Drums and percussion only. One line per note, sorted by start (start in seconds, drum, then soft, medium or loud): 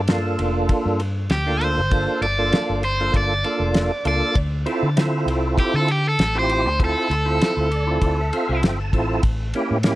0.08 snare loud
0.08 ride medium
0.39 ride medium
0.69 kick medium
0.69 ride medium
1.00 ride medium
1.30 snare loud
1.30 ride medium
1.61 ride medium
1.91 kick loud
1.91 ride medium
2.22 ride medium
2.53 snare loud
2.53 ride medium
2.83 ride medium
3.14 kick medium
3.14 ride medium
3.44 ride medium
3.74 snare loud
3.74 ride medium
4.05 ride medium
4.35 kick loud
4.35 ride loud
4.66 ride medium
4.97 snare loud
4.97 ride medium
5.28 ride medium
5.58 kick medium
5.58 ride medium
5.88 ride medium
6.19 snare loud
6.19 ride medium
6.49 ride medium
6.80 kick loud
6.80 ride medium
7.11 ride medium
7.42 snare loud
7.42 ride medium
7.72 ride medium
8.02 kick medium
8.02 ride medium
8.33 ride medium
8.63 snare loud
8.63 ride medium
8.93 kick medium
8.93 ride medium
9.23 kick loud
9.23 ride medium
9.54 ride medium
9.83 snare loud
9.83 ride medium